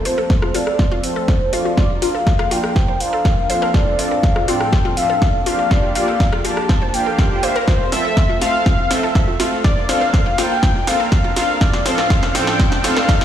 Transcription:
Already playing: F3 A3 C4 A4
0.05 C4 F4 A4 C5, open hi-hat
0.18 A4
0.30 kick, snare
0.42 F4, cross-stick
0.54 C4 F4 A4 D5, open hi-hat
0.67 cross-stick
0.79 F4, kick, snare
0.92 F4
1.04 C4 F4 C5, open hi-hat
1.16 A4
1.28 A4, kick, snare
1.52 D4 F4 D5 F5, open hi-hat
1.65 F4
1.77 A#3 D4 F4 A#4 D5, kick, snare
2.02 D4 F4 A#4 F5, open hi-hat
2.15 A4
2.27 kick, snare
2.39 F4, cross-stick
2.51 D4 F4 A#4 G5, open hi-hat
2.64 cross-stick
2.76 C5, kick, snare
2.88 C5
3.00 D4 F4 C5 F5, open hi-hat
3.13 A4
3.25 F5, kick, snare
3.49 C4 D4 F4 A4 C5 F5, open hi-hat
3.62 A#4
3.74 A2 C4 F4 A4 D5, kick, snare
3.99 C4 D4 F4 A4 C5 D5 F5, open hi-hat
4.11 A4
4.23 kick, snare
4.36 F4, cross-stick
4.48 C4 D4 F4 A4 D5 G5, open hi-hat
4.61 cross-stick
4.73 F4, kick, snare
4.85 F4
4.97 C4 D4 F4 A4 E5 F5, open hi-hat
5.10 A4
5.22 A4, kick, snare
5.46 A#3 D4 F4 G4 F5, open hi-hat
5.59 F4
5.71 A#3 F4 G4 D5, kick, snare
5.95 A#3 D4 F4 G4 D5 F5, open hi-hat
6.08 A4
6.20 kick, snare
6.32 F4, cross-stick
6.45 A#3 D4 F4 G4 D5 A5, open hi-hat
6.57 cross-stick
6.69 C5, kick, snare
6.82 C5
6.94 A#3 D4 F4 G4 F5 G5, open hi-hat
7.06 A4
7.19 F5, kick, snare
7.31 A#3 D4 F4 G4 C5
7.43 A#3 D4 F4 G4 C5 E5 F5, open hi-hat
7.56 A#4
7.67 A3 C4 F4 A4 C5, kick, snare, riser
7.92 C4 F4 A4 C5 E5, snare, open hi-hat
8.05 A4
8.17 kick, snare
8.29 F4
8.41 C4 F4 A4 F5, snare, open hi-hat
8.66 F4, kick, snare
8.91 C4 F4 A4 C5 E5, snare, open hi-hat
9.03 A4
9.15 kick, snare
9.28 F4
9.40 C4 F4 A4 F5, snare, open hi-hat
9.64 A#3 D4 F4 A#4 D5, kick, snare
9.89 C4 F4 A4 C5 F5, snare, open hi-hat
10.01 A4
10.14 kick, snare
10.26 F4
10.38 C4 F4 A4 G5, snare, open hi-hat
10.63 F4, kick, snare
10.87 C4 F4 A4 C5 F5, snare, open hi-hat
11.00 A4
11.12 kick, snare
11.24 F4
11.36 C4 F4 A4 F5, snare, open hi-hat
11.61 A2 F3 C4 F4 A4 D5, kick, snare
11.73 snare
11.86 C4 F4 A4 C5 F5, snare, open hi-hat
11.98 A4, snare
12.10 F4, kick, snare
12.23 snare
12.35 C4 F4 A4 C5 G5, snare, open hi-hat
12.47 A4, snare
12.59 F4, kick, snare
12.72 snare
12.84 C4 F4 A4 C5 F5, snare, open hi-hat
12.97 A4, snare
13.09 F4, kick, snare
13.21 snare

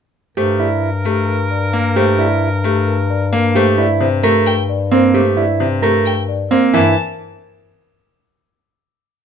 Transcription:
0.37 G2 A3 G4 A#4 C5
0.60 E4 D5
1.05 A3 G4
1.28 A#4
1.51 D5
1.73 A#3
1.96 A3 G4 C5
2.19 E4 D5
2.64 A3 G4
2.87 A#4
3.10 D5
3.33 A#3
3.55 A3 G4 C5
3.78 E4 D5
4.01 C3 C5
4.23 A3 G4 A#4
4.46 A#4 G5
4.69 D5
4.91 A#3 C4 C5
5.14 A3 G4 C5
5.37 E4 D5
5.60 C3 C5
5.82 A3 G4 A#4
6.06 A#4 G5
6.29 D5
6.51 A#3 C4 C5
6.73 G2 E3 E4 A#4 A5

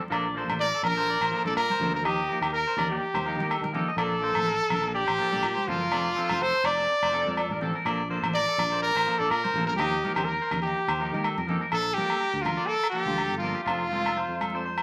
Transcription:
0.02 muted clean electric guitar stroke
0.10 A#1 F3 A#3 D4 A4 D5, low agogo
0.34 F3 A#3 D4 A4 C5
0.48 A1 A#3 D4 A4, low conga, low agogo
0.60 A#4 D5
0.74 A4
0.83 A#1 A#4, low conga, low agogo
0.95 A#3 D4 A4 C5
1.10 D5
1.21 A1 C5, low agogo
1.31 F3 A#3 D4 A4
1.44 A#1 A#3 D4 A4 D5, high conga
1.56 A#2 A#4, low agogo
1.70 C5, high conga
1.80 D2 F3 A#3 D4 A4, low conga
1.95 A#4
2.05 D#2 F3 D#4 G4 D#5, muted clean electric guitar stroke, low agogo
2.29 F3 A#3 D#4 G4 A#4
2.41 D#2 A#3 D#4 G4, low agogo
2.53 A#4
2.67 C5
2.77 D#2 D5, low conga, low agogo
2.89 A#3 D#4 G4
3.14 D#2 C5, high conga, low agogo
3.25 F3 A#3 D#4 G4 A#4
3.37 D#3 D#4 G4 A#4, high conga
3.42 A#3
3.50 A4, low agogo
3.61 D#3 A#4, high conga
3.73 F3 A#3 D#4 G4 A4, low conga
3.88 D#5
3.97 A#1 F3 A#3 D4 A4 D5, low agogo
4.20 F3 A#3 D4 A4 C5
4.35 A1 A#3 A4, muted clean electric guitar stroke, low conga, low agogo
4.47 A#4
4.59 A4
4.70 A#1 A#4, low conga, low agogo
4.83 A#3 D4 A4, muted clean electric guitar stroke
4.94 G4 D5
5.07 A1 C5, low agogo
5.18 F3 A#3 D4 A4
5.31 A#1 A#3 D4 A4 D5, high conga
5.43 A#2, low agogo
5.55 C5, high conga
5.67 F#1 F3 A#3 D4 F4 A4, low conga
5.80 A#4
5.92 F1 F3 C4 D4 A4 D5, low agogo
6.16 F3 C4 D4 A4
6.29 F1 C4 A4 C5, low conga, low agogo
6.42 A4 C5
6.54 C5
6.64 F1 D5, low agogo
6.77 C4 D4 A4
7.02 F1 C5, low agogo
7.11 F3 C4 D4 A4
7.25 F2 C4 D4 A4 A#4, high conga
7.37 A4, low agogo
7.49 A1 A#4, high conga
7.60 F3 C4 D4 A4, low conga
7.75 A#4
7.85 A#1 F3 A#3 D4 A4 D5, low agogo
8.10 F3 A#3 D4 A4 C5
8.22 A1 A#3 D4 A4, low conga, low agogo
8.35 A#4 D5
8.48 A4
8.58 A#1, low conga, low agogo
8.70 A#3 D4 A4 C5
8.82 A#4 D5
8.95 A1 C5, low agogo
9.06 F3 A#3 D4 A4
9.19 A#1 A#3 D4 A4 D5
9.30 A#2 A#4, low agogo
9.44 C5, high conga
9.54 A1 A#3, low conga
9.58 A4
9.67 A#4
9.76 D#2 F3 A#3 D#4 G4 D#5, low agogo
10.03 F3 A#3 D#4 G4 A#4, high conga
10.14 D#2 D#4 G4 C5, low conga, low agogo
10.20 A#3
10.25 A#4
10.42 C5
10.51 D#2, muted clean electric guitar stroke, low conga, low agogo
10.62 D#4 G4
10.67 A#3
10.88 D#2 C5, low agogo
11.00 F3 D#4 G4 A#4
11.12 D#3 A#3 D#4 G4 A#4, high conga
11.24 A4, low agogo
11.37 F2 A#4, high conga
11.47 F3 A#3 D#4 G4 A4, low conga
11.61 A#4
11.71 A#1 F3 D4 A4, muted clean electric guitar stroke, low agogo
11.94 F3 G4 A#4
11.98 A#3 D4 A4, high conga
12.10 A#3 D4 A4, low agogo
12.20 A#4
12.34 D2
12.42 F4 A#4, high conga, low conga
12.46 low agogo
12.57 A#3 D4 A4 D5
12.66 A4 A#4
12.84 low agogo
12.90 F3 G4 A4
12.94 A#3 D4 A4
13.06 D2 A#3 F4 A4, high conga, low conga
13.16 A4, low agogo
13.30 G1
13.37 F3 F4 A#4
13.42 A#3 D4 A4
13.55 G4
13.64 F1 F3 C4 D4 F4, low agogo
13.69 A4
13.90 F3 C4 F4 A4, high conga
14.04 C4 D4 A4, low agogo
14.17 C5
14.28 F2
14.41 A4, high conga, low agogo
14.53 C4 D4 A4 C5
14.66 C5
14.78 low agogo

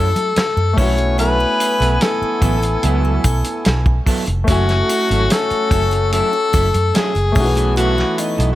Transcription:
Already playing: F#2 A3 C#4 E4 F#4 A4 G#5
0.15 F#3, muted clean electric guitar stroke, closed hi-hat, muted triangle
0.36 muted clean electric guitar stroke, muted fingered electric bass stroke, snare, closed hi-hat, muted triangle
0.56 F#2, muted clean electric guitar stroke, muted triangle
0.73 F#3 A3 B3 C#4 E4
0.77 B1 B3 E4 A4 C#5 G#5, kick, open hi-hat, triangle
0.81 F#4
0.97 muted clean electric guitar stroke, closed hi-hat, muted triangle
1.17 F#3 B3 E4 A4 B4, closed hi-hat, muted triangle
1.38 muted clean electric guitar stroke, muted triangle
1.59 muted clean electric guitar stroke, closed hi-hat, triangle
1.80 B1 F#3 B3 E4 A4, closed hi-hat, muted triangle
2.01 A4, muted clean electric guitar stroke, snare, closed hi-hat, muted triangle
2.22 muted fingered electric bass stroke, muted triangle
2.42 A1 F#3 B3 E4 A4, kick, closed hi-hat, triangle
2.63 muted clean electric guitar stroke, closed hi-hat, muted triangle
2.82 C#2 F#3 B3 E4 A4, closed hi-hat, muted triangle
3.05 muted triangle
3.24 B1, kick, closed hi-hat, triangle
3.44 muted clean electric guitar stroke, closed hi-hat, muted triangle
3.65 B1, muted clean electric guitar stroke, snare, closed hi-hat, muted triangle
3.86 muted clean electric guitar stroke, kick, muted triangle
4.06 F#3 B3 E4 A4, kick, open hi-hat, triangle
4.26 F1, muted clean electric guitar stroke, closed hi-hat, muted triangle
4.44 F#3 A3 C#4 F#4, kick, closed hi-hat, muted triangle
4.48 F#1 C#4 E4 F#4 A4 G#5
4.69 muted clean electric guitar stroke, snare, closed hi-hat, muted triangle
4.89 muted clean electric guitar stroke, closed hi-hat, triangle
5.09 G#1 F#3 C#4 E4 A4, closed hi-hat, muted triangle
5.30 A4, muted clean electric guitar stroke, snare, closed hi-hat, muted triangle
5.50 muted fingered electric bass stroke, closed hi-hat, muted triangle
5.71 F#1 F#3 C#4 E4 A4, kick, closed hi-hat, triangle
5.91 muted clean electric guitar stroke, closed hi-hat, muted triangle
6.12 F#3 C#4 E4 A4, closed hi-hat, muted triangle
6.33 muted clean electric guitar stroke, muted triangle
6.53 F#1 F#3 C#4 E4 A4, kick, closed hi-hat, triangle
6.74 F#2, muted clean electric guitar stroke, closed hi-hat, muted triangle
6.94 F#3 C#4 E4 G#4 A4, muted fingered electric bass stroke, snare, closed hi-hat, muted triangle
7.15 F#1, closed hi-hat, muted triangle
7.32 E3 A3 B3 C#4, muted clean electric guitar stroke, kick, triangle
7.36 B1 D#4 F#4, open hi-hat
7.44 E3
7.55 F#3 B3 E4 A4, closed hi-hat, muted triangle
7.76 F#3 B3 E4 F#4 A4, closed hi-hat, muted triangle
7.97 muted clean electric guitar stroke, snare, muted triangle
8.18 D#4, muted clean electric guitar stroke, closed hi-hat, triangle
8.38 B1 F#3 B3 E4 A4, closed hi-hat, muted triangle

